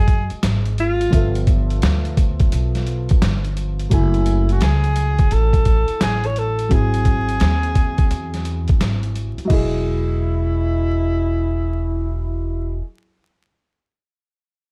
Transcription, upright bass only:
0, 0, Header, 1, 3, 480
1, 0, Start_track
1, 0, Key_signature, 4, "major"
1, 0, Tempo, 697674
1, 773, Time_signature, 4, 2, 24, 8
1, 10122, End_track
2, 0, Start_track
2, 0, Title_t, "Upright bass"
2, 0, Program_c, 0, 32
2, 0, Note_on_c, 0, 42, 90
2, 193, Note_off_c, 0, 42, 0
2, 301, Note_on_c, 0, 32, 91
2, 753, Note_off_c, 0, 32, 0
2, 775, Note_on_c, 0, 31, 90
2, 1230, Note_off_c, 0, 31, 0
2, 1258, Note_on_c, 0, 38, 83
2, 1712, Note_off_c, 0, 38, 0
2, 1739, Note_on_c, 0, 35, 83
2, 2113, Note_off_c, 0, 35, 0
2, 2221, Note_on_c, 0, 31, 93
2, 2673, Note_off_c, 0, 31, 0
2, 2696, Note_on_c, 0, 30, 90
2, 3151, Note_off_c, 0, 30, 0
2, 3178, Note_on_c, 0, 37, 81
2, 3632, Note_off_c, 0, 37, 0
2, 3657, Note_on_c, 0, 33, 86
2, 4032, Note_off_c, 0, 33, 0
2, 4137, Note_on_c, 0, 33, 83
2, 4592, Note_off_c, 0, 33, 0
2, 4617, Note_on_c, 0, 32, 94
2, 5071, Note_off_c, 0, 32, 0
2, 5100, Note_on_c, 0, 39, 83
2, 5553, Note_off_c, 0, 39, 0
2, 5577, Note_on_c, 0, 40, 89
2, 5952, Note_off_c, 0, 40, 0
2, 6057, Note_on_c, 0, 32, 84
2, 6432, Note_off_c, 0, 32, 0
2, 6537, Note_on_c, 0, 28, 82
2, 8805, Note_off_c, 0, 28, 0
2, 10122, End_track
3, 0, Start_track
3, 0, Title_t, "Muted upright bass strokes"
3, 215, Note_on_c, 9, 29, 46
3, 284, Note_off_c, 9, 29, 0
3, 2141, Note_on_c, 9, 29, 43
3, 2210, Note_off_c, 9, 29, 0
3, 5983, Note_on_c, 9, 29, 38
3, 6052, Note_off_c, 9, 29, 0
3, 6453, Note_on_c, 9, 29, 43
3, 6522, Note_off_c, 9, 29, 0
3, 10122, End_track
0, 0, End_of_file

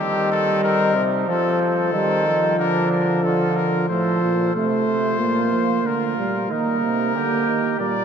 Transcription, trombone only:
0, 0, Header, 1, 2, 480
1, 0, Start_track
1, 0, Key_signature, -3, "major"
1, 0, Tempo, 651466
1, 944, Time_signature, 4, 2, 24, 8
1, 5928, End_track
2, 0, Start_track
2, 0, Title_t, "Trombone"
2, 0, Program_c, 0, 57
2, 0, Note_on_c, 0, 55, 79
2, 915, Note_off_c, 0, 55, 0
2, 945, Note_on_c, 0, 53, 82
2, 1415, Note_off_c, 0, 53, 0
2, 1426, Note_on_c, 0, 55, 77
2, 1661, Note_off_c, 0, 55, 0
2, 1672, Note_on_c, 0, 53, 82
2, 2849, Note_off_c, 0, 53, 0
2, 2873, Note_on_c, 0, 53, 77
2, 3327, Note_off_c, 0, 53, 0
2, 3352, Note_on_c, 0, 57, 80
2, 3823, Note_off_c, 0, 57, 0
2, 3834, Note_on_c, 0, 58, 69
2, 4537, Note_off_c, 0, 58, 0
2, 4553, Note_on_c, 0, 55, 69
2, 4793, Note_on_c, 0, 58, 76
2, 4804, Note_off_c, 0, 55, 0
2, 5267, Note_off_c, 0, 58, 0
2, 5271, Note_on_c, 0, 58, 70
2, 5735, Note_off_c, 0, 58, 0
2, 5744, Note_on_c, 0, 55, 69
2, 5928, Note_off_c, 0, 55, 0
2, 5928, End_track
0, 0, End_of_file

